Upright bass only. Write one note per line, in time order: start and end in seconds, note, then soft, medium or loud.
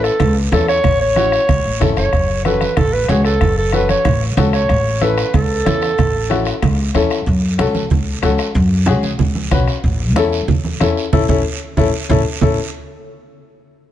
0.20 0.46 C#2 loud
0.52 0.78 E2 loud
0.84 1.36 A1 medium
1.49 1.62 C#2 medium
1.65 1.79 A1 medium
1.81 1.95 G#1 medium
1.97 2.12 F#1 medium
2.13 2.64 F#1 medium
2.77 3.03 A1 loud
3.09 3.35 C#2 loud
3.41 3.92 F#1 medium
4.05 4.31 A1 loud
4.37 4.63 C#2 loud
4.69 5.21 A1 medium
5.34 5.60 C#2 loud
5.66 5.92 E2 loud
5.99 6.50 A1 medium
6.62 6.88 C#2 loud
6.95 7.20 E2 medium
7.27 7.61 F#2 loud
7.59 7.85 C#2 medium
7.91 8.17 C#2 medium
8.23 8.36 C#2 loud
8.55 8.89 F#2 loud
8.87 9.13 C#2 medium
9.19 9.45 C#2 medium
9.51 9.64 B1 loud
9.84 10.16 A1 loud
10.16 10.42 E2 medium
10.48 10.74 E2 loud
10.81 10.94 E2 loud
11.13 11.25 A1 medium
11.29 11.41 A1 loud
11.77 11.89 A1 medium
12.09 12.21 A1 loud
12.42 12.57 A1 medium